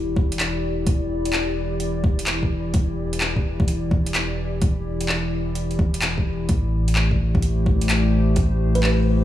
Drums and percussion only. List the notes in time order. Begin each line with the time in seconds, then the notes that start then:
0.17 kick
0.32 closed hi-hat
0.40 clap, closed hi-hat, claves
0.87 kick, closed hi-hat
1.25 closed hi-hat
1.33 clap
1.80 closed hi-hat
2.04 kick
2.19 closed hi-hat
2.27 clap, closed hi-hat
2.43 kick
2.74 kick, closed hi-hat
3.13 closed hi-hat
3.21 clap
3.36 kick
3.60 kick
3.68 closed hi-hat
3.91 kick
4.06 closed hi-hat
4.15 clap, closed hi-hat, claves
4.62 kick, closed hi-hat
5.01 closed hi-hat
5.09 clap
5.55 closed hi-hat
5.71 closed hi-hat
5.79 kick
5.94 closed hi-hat
6.02 clap, closed hi-hat
6.18 kick
6.49 kick, closed hi-hat
6.88 closed hi-hat
6.95 clap
7.11 kick
7.35 kick
7.42 closed hi-hat
7.66 kick
7.81 closed hi-hat
7.90 clap, closed hi-hat, claves
8.36 kick, closed hi-hat
8.75 closed hi-hat
8.83 clap